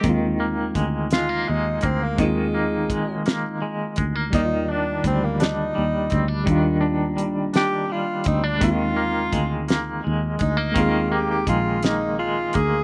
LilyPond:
<<
  \new Staff \with { instrumentName = "Tenor saxophone" } { \time 6/8 \key bes \mixolydian \tempo 4. = 56 r4. f'8 ees'8 c'16 bes16 | aes4. r4. | ees'8 d'8 c'16 bes16 ees'4. | r4. g'8 f'8 ees'16 d'16 |
f'4. r4 ees'8 | f'8 g'16 g'16 f'8 ees'8 f'8 aes'8 | }
  \new Staff \with { instrumentName = "Tine electric piano" } { \time 6/8 \key bes \mixolydian <aes c' ees' f'>2. | <aes c' ees' f'>2. | <g bes ees' f' d''>2. | <g bes d' f'>2. |
<aes c' ees' f'>2. | <aes c' ees' aes'>2. | }
  \new Staff \with { instrumentName = "Clean electric guitar" } { \clef bass \time 6/8 \key bes \mixolydian ees8 bes8 aes8 aes16 bes16 aes8 bes8 | ees8 bes8 aes8 bes8 aes8 aes16 bes16 | ees8 d'8 g8 d'8 g8 c'16 d'16 | ees8 d'8 g8 d'8 g8 c'16 d'16 |
ees8 bes8 aes8 bes8 aes8 aes16 bes16 | ees8 bes8 aes8 bes8 aes8 bes8 | }
  \new Staff \with { instrumentName = "Fingered electric bass" } { \clef bass \time 6/8 \key bes \mixolydian ees,4 d,4 ees,8 d,8 | ees,4 bes,,4. d,8 | ees,4 d,4 ees,8 d,8 | ees,4 bes,,4. d,8 |
ees,4 d,4 ees,8 d,8 | ees,4 bes,,4. d,8 | }
  \new DrumStaff \with { instrumentName = "Drums" } \drummode { \time 6/8 <hh bd>4 <hh bd>8 <hh sn>4 <hh bd>8 | <hh bd>4 <hh bd>8 <hh sn>4 <hh bd>8 | <hh bd>4 <hh bd>8 <hh sn>4 <hh bd>8 | <hh bd>4 hh8 <hh sn>4 <hh bd>8 |
<hh bd>4 <hh bd>8 <hh sn>4 <hh bd>8 | <hh bd>4 <hh bd>8 <hh sn>4 <hh bd>8 | }
>>